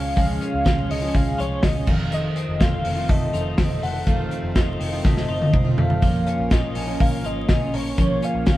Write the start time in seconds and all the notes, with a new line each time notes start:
Already playing: C#2 F3 G#3 C#4 F4 G#4 C#5 F5
0.16 C#2 C#3 F3 G#3 C#4 F4 F5, kick, hi-hat pedal, open hi-hat
0.41 C#4, hi-hat pedal, open hi-hat
0.54 C#2
0.64 C#2 F3 G#3 C#4 F4, kick, snare, hi-hat pedal, open hi-hat
0.89 C#2 C#4 D#5, hi-hat pedal, open hi-hat
1.01 C#3 F3 G#3 C#4 F4
1.14 C#2 G#3 F5, kick, hi-hat pedal, open hi-hat
1.37 C2 F3 G#3 C#4 F4 C#5, hi-hat pedal, open hi-hat
1.63 C#2 C#4 D#5, kick, snare, hi-hat pedal, open hi-hat
1.74 G#3 C#4 F4
1.86 F1 F2 C3 D#3 A3 C4 D#4 F4 A4 C5 F5, kick, crash
2.11 D#3 D#5, hi-hat pedal, open hi-hat
2.36 C4, hi-hat pedal, open hi-hat
2.48 F1
2.60 F1 D#3 A3 C4 F4 F5, kick, snare, hi-hat pedal, open hi-hat
2.84 F1 C4, hi-hat pedal, open hi-hat
2.96 F2 C3 D#3 A3 C4 F4
3.09 F1 A3 D#5, kick, hi-hat pedal, open hi-hat
3.33 F1 D#3 A3 C4 F4, hi-hat pedal, open hi-hat
3.58 F1 C4, kick, snare, hi-hat pedal, open hi-hat
3.70 D#3 A3 C4 F4
3.82 F1 A3 F#5, hi-hat pedal, open hi-hat
4.07 F1 F2 C3 D#3 A3 C4 F4 F5, kick, hi-hat pedal, open hi-hat
4.31 C4, hi-hat pedal, open hi-hat
4.43 F1
4.48 F5
4.55 F1 D#3 A3 C4 F4 D#5, kick, snare, hi-hat pedal, open hi-hat
4.79 F1 C4, hi-hat pedal, open hi-hat
4.92 F2 C3 D#3 A3 C4 F4
5.04 F1 A3 D#5, kick, snare
5.17 snare
5.28 F#1 D#3 A3 C4 F4
5.42 high tom
5.53 F1 C4, kick, mid tom
5.65 D#3 A3 C4 F4
5.78 F1 A3 F5, floor tom
5.90 floor tom
6.02 A#1 A#2 F3 A#3 C#4 F4 A#4 C#5, kick, hi-hat pedal, open hi-hat
6.27 C#4, hi-hat pedal, open hi-hat
6.39 A#1
6.50 A#1 F3 A#3 C#4 F4 D#5, kick, snare, hi-hat pedal, open hi-hat
6.75 A#1 C#4, hi-hat pedal, open hi-hat
6.87 A#2 F3 A#3 C#4 F4
7.00 A#1 A#3 F5, kick, hi-hat pedal, open hi-hat
7.23 G#1 F3 A#3 C#4 F4 D#5, hi-hat pedal, open hi-hat
7.49 A#1 C#4, kick, snare, hi-hat pedal, open hi-hat
7.60 A#3 C#4 F4
7.73 A#1 A#3 C#5, hi-hat pedal, open hi-hat
7.97 A#1 A#2 F3 A#3 C#4 F4 G#4 C#5, kick, hi-hat pedal, open hi-hat
8.22 C#4 F5, hi-hat pedal, open hi-hat
8.35 A#1
8.46 F3 A#3 C#4 F4, kick, snare, hi-hat pedal, open hi-hat